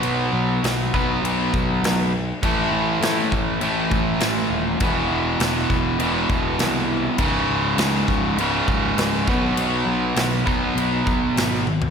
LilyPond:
<<
  \new Staff \with { instrumentName = "Overdriven electric guitar" } { \clef bass \time 4/4 \key b \mixolydian \tempo 4 = 101 <b, fis b>4. <b, fis b>2 r8 | <a, e a>2 <a, e a>2 | <e, b, e>2 <e, b, e>2 | <cis, gis, cis>2 <cis, gis, cis>4. <b, fis b>8~ |
<b, fis b>4. <b, fis b>2 r8 | }
  \new Staff \with { instrumentName = "Picked electric bass" } { \clef bass \time 4/4 \key b \mixolydian b,,8 b,,8 b,,8 b,,8 b,,8 b,,8 b,,4 | a,,8 a,,8 a,8 a,,8 a,,8 a,,8 a,,8 dis,,8 | e,,8 e,,8 e,,8 e,,8 e,,8 e,,8 bis,,4 | cis,,8 cis,,8 cis,8 cis,,8 cis,,8 cis,,8 cis,,8 b,,8 |
b,,8 b,,8 b,,8 b,,8 b,,8 b,,8 gis,,4 | }
  \new DrumStaff \with { instrumentName = "Drums" } \drummode { \time 4/4 cymc4 <cymc sn>8 bd8 cymc8 bd8 <cymc sn>4 | <cymc bd>4 <cymc sn>8 bd8 cymc8 bd8 <cymc sn>4 | <cymc bd>4 <cymc sn>8 bd8 cymc8 bd8 <cymc sn>4 | <cymc bd>4 <cymc sn>8 bd8 cymc8 bd8 <cymc sn>8 bd8 |
cymc4 <cymc sn>8 bd8 cymc8 bd8 <cymc sn>8 tommh16 tomfh16 | }
>>